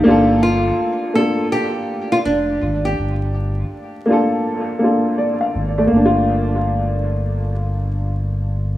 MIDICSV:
0, 0, Header, 1, 4, 480
1, 0, Start_track
1, 0, Key_signature, -2, "minor"
1, 0, Tempo, 731707
1, 36, Time_signature, 4, 2, 24, 8
1, 5758, End_track
2, 0, Start_track
2, 0, Title_t, "Nylon-string guitar"
2, 0, Program_c, 0, 24
2, 281, Note_on_c, 0, 65, 99
2, 754, Note_off_c, 0, 65, 0
2, 757, Note_on_c, 0, 69, 86
2, 980, Note_off_c, 0, 69, 0
2, 998, Note_on_c, 0, 67, 108
2, 1362, Note_off_c, 0, 67, 0
2, 1391, Note_on_c, 0, 65, 100
2, 1424, Note_off_c, 0, 65, 0
2, 1479, Note_on_c, 0, 62, 87
2, 1869, Note_on_c, 0, 67, 76
2, 1880, Note_off_c, 0, 62, 0
2, 3371, Note_off_c, 0, 67, 0
2, 5758, End_track
3, 0, Start_track
3, 0, Title_t, "Upright piano"
3, 0, Program_c, 1, 0
3, 0, Control_c, 1, 64, 127
3, 24, Note_on_c, 1, 58, 103
3, 39, Note_on_c, 1, 62, 96
3, 46, Control_c, 1, 64, 0
3, 54, Note_on_c, 1, 65, 102
3, 69, Note_on_c, 1, 69, 116
3, 158, Control_c, 1, 64, 127
3, 621, Note_off_c, 1, 58, 0
3, 629, Note_off_c, 1, 62, 0
3, 636, Note_off_c, 1, 65, 0
3, 644, Note_off_c, 1, 69, 0
3, 746, Note_on_c, 1, 58, 75
3, 760, Note_on_c, 1, 62, 87
3, 776, Note_on_c, 1, 65, 77
3, 790, Note_on_c, 1, 69, 90
3, 1519, Note_off_c, 1, 58, 0
3, 1526, Note_off_c, 1, 62, 0
3, 1534, Note_off_c, 1, 65, 0
3, 1541, Note_off_c, 1, 69, 0
3, 2663, Note_on_c, 1, 58, 78
3, 2679, Note_on_c, 1, 62, 75
3, 2693, Note_on_c, 1, 65, 79
3, 2708, Note_on_c, 1, 69, 103
3, 3074, Note_off_c, 1, 58, 0
3, 3082, Note_off_c, 1, 62, 0
3, 3090, Note_off_c, 1, 65, 0
3, 3097, Note_off_c, 1, 69, 0
3, 3144, Note_on_c, 1, 58, 73
3, 3160, Note_on_c, 1, 62, 66
3, 3175, Note_on_c, 1, 65, 70
3, 3190, Note_on_c, 1, 69, 75
3, 3399, Note_on_c, 1, 74, 68
3, 3541, Note_off_c, 1, 74, 0
3, 3548, Note_on_c, 1, 77, 70
3, 3555, Note_off_c, 1, 58, 0
3, 3563, Note_off_c, 1, 62, 0
3, 3571, Note_off_c, 1, 65, 0
3, 3578, Note_off_c, 1, 69, 0
3, 3775, Note_off_c, 1, 77, 0
3, 3792, Note_on_c, 1, 57, 85
3, 3794, Note_on_c, 1, 74, 67
3, 3851, Note_on_c, 1, 58, 73
3, 3884, Control_c, 1, 64, 0
3, 3911, Note_on_c, 1, 62, 72
3, 3972, Note_on_c, 1, 65, 89
3, 3991, Control_c, 1, 64, 127
3, 4019, Note_off_c, 1, 74, 0
3, 5758, Note_off_c, 1, 57, 0
3, 5758, Note_off_c, 1, 58, 0
3, 5758, Note_off_c, 1, 62, 0
3, 5758, Note_off_c, 1, 65, 0
3, 5758, End_track
4, 0, Start_track
4, 0, Title_t, "Sub bass"
4, 0, Program_c, 2, 38
4, 43, Note_on_c, 2, 31, 111
4, 471, Note_off_c, 2, 31, 0
4, 1481, Note_on_c, 2, 29, 85
4, 1694, Note_off_c, 2, 29, 0
4, 1720, Note_on_c, 2, 32, 96
4, 1934, Note_off_c, 2, 32, 0
4, 1961, Note_on_c, 2, 31, 106
4, 2390, Note_off_c, 2, 31, 0
4, 3642, Note_on_c, 2, 32, 98
4, 3855, Note_off_c, 2, 32, 0
4, 3883, Note_on_c, 2, 31, 101
4, 5758, Note_off_c, 2, 31, 0
4, 5758, End_track
0, 0, End_of_file